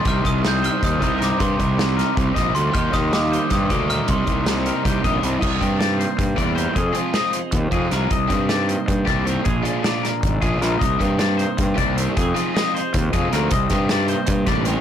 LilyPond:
<<
  \new Staff \with { instrumentName = "Glockenspiel" } { \time 7/8 \key c \minor \tempo 4 = 156 f'''8 ees'''8 g'''8 f'''8 ees'''4 d'''8 | c'''4 r2 c'''8 | f'''8 ees'''8 d'''4 ees'''4 f'''8 | c'''2. r8 |
r2. r8 | r2. r8 | r2. r8 | r2. r8 |
r2. r8 | r2. r8 | r2. r8 | }
  \new Staff \with { instrumentName = "Clean electric guitar" } { \time 7/8 \key c \minor g'8 ees''4 c''4 ees''8 bes'8 | g'4 r8 bes'8 g'8 ees''8 d''8 | g'8 ees''4 c''4 d''8 bes'8 | g'4 r8 bes'8 g'8 ees''8 d''8 |
ees''4 d''8 c''4 d''8 c''8 | aes'4 ees''8 c''4 aes'8 bes'8 | ees''4 d''8 c''4 d''8 c''8 | aes'4 d''8 bes'4 aes'8 bes'8 |
ees''4 d''8 c''4 d''8 c''8 | aes'4 ees''8 c''4 aes'8 bes'8 | ees''4 d''8 c''4 d''8 c''8 | }
  \new Staff \with { instrumentName = "Clean electric guitar" } { \time 7/8 \key c \minor << { bes'8 ees'2 g'16 bes'8. | bes'8 ees'2. | g'8 ees'2 g'4 | <g bes ees' bes'>8 ees'2 g'16 bes'8. |
r4 ees'8 bes4 bes8 bes'8 | r4 aes'8 ees'4 ees'8 aes'8 | r4 ees'8 bes4 bes8 bes'8 | <f d' f' aes'>4 f'8 d'2 |
<g bes ees' bes'>4 ees'8 bes4 bes8 bes'8 | <c' ees' aes'>4 aes'8 ees'4 ees'8 aes'8 | r4 ees'8 bes4 bes8 bes'8 | } \\ { c4. g4. g,8 | c4. g8 bes,8 c8 d8 | ees4. g4. bes,8 | c4. g4. g,8 |
c8 g4. g,4. | f8 c'4. c4. | c8 g4. g,4. | bes,8 f4. g,8 aes,8 bes,8 |
c8 g4. g,4. | f8 c'4. c4. | c8 g4. g,4. | } >> }
  \new Staff \with { instrumentName = "Overdriven electric guitar" } { \time 7/8 \key c \minor <c g c' ees'>8 <g c' ees'>8 <c g c' ees'>8 <g c' ees'>8 <c g c' ees'>8 <c g c' ees'>8 <c g c' ees'>8 | <c g c' ees'>8 <g c' ees'>8 <c g c' ees'>8 <g c' ees'>8 <c g c' ees'>8 <c g c' ees'>8 <c g c' ees'>8 | <ees g bes ees'>8 <g bes ees'>8 <ees g bes ees'>8 <g bes ees'>8 <ees g bes ees'>8 <ees g bes ees'>8 <ees g bes ees'>8 | <c g c' ees'>8 <g c' ees'>8 <c g c' ees'>8 <g c' ees'>8 <c g c' ees'>8 <c g c' ees'>8 <c g c' ees'>8 |
r8 <ees g c' g'>8 <ees g c' g'>8 r4 <ees g c' g'>8 <ees g c' g'>8 | r8 <f aes c' f'>8 <f aes c' f'>8 r4 <f aes c' f'>8 <f aes c' f'>8 | r8 <ees g c' g'>8 <ees g c' g'>8 r4 <ees g c' g'>8 <ees g c' g'>8 | r8 <f aes d' f'>8 <f aes d' f'>8 r4 <f aes d' f'>8 <f aes d' f'>8 |
r8 <ees g c' g'>8 <ees g c' g'>8 r4 <ees g c' g'>8 <ees g c' g'>8 | r8 <f aes c' f'>8 <f aes c' f'>8 r4 <f aes c' f'>8 <f aes c' f'>8 | r8 <ees g c' g'>8 <ees g c' g'>8 r4 <ees g c' g'>8 <ees g c' g'>8 | }
  \new Staff \with { instrumentName = "Fingered electric bass" } { \clef bass \time 7/8 \key c \minor c,8 c,4. ees,8 c,4 | g,8 c,4. c,8 bes,,8 d,8 | ees,8 ees,4. g,8 d,4 | c,8 c,4. c,8 bes,,8 c,8 |
c,8 g,4. g,8 e,4 | f,8 r4. ees,8 f,8 c,8 | c,8 g,4. g,8 c,4 | bes,,8 r4. aes,,8 bes,,8 bes,,8 |
c,8 g,4. g,8 c,4 | f,8 r4. ees,8 f,8 d,8 | c,8 g,4. g,8 a,,4 | }
  \new DrumStaff \with { instrumentName = "Drums" } \drummode { \time 7/8 <hh bd>8 <hh bd>8 <hh sn>8 hh8 <hh bd>8 <hh bd>8 <hh sn>8 | <hh bd>8 <hh bd>8 <hh sn>8 <hh sn>8 <hh bd>8 <hh bd sn>8 hh8 | <hh bd>8 <hh bd sn>8 <hh sn>8 hh8 <hh bd sn>8 <hh bd>8 hh8 | <hh bd>8 <hh bd>8 <hh sn>8 hh8 <hh bd>8 <hh bd>8 hh8 |
<cymc bd>8 <hh bd>8 <hh sn>8 hh8 <hh bd>8 <hh bd>8 hh8 | <hh bd>8 hh8 <hh sn>8 hh8 <hh bd>8 <hh bd>8 <hh sn>8 | <hh bd>8 <hh bd>8 <hh sn>8 hh8 <hh bd>8 <hh bd sn>8 hh8 | <hh bd>8 hh8 <hh sn>8 <hh sn>8 <hh bd>8 <hh bd>8 <hh sn>8 |
<hh bd>8 <hh bd>8 <hh sn>8 hh8 <hh bd>8 <hh bd>8 hh8 | <hh bd>8 hh8 <hh sn>8 hh8 <hh bd>8 <hh bd>8 <hh sn>8 | <hh bd>8 <hh bd sn>8 <hh sn>8 hh8 <hh bd>8 <hh bd sn>8 hh8 | }
>>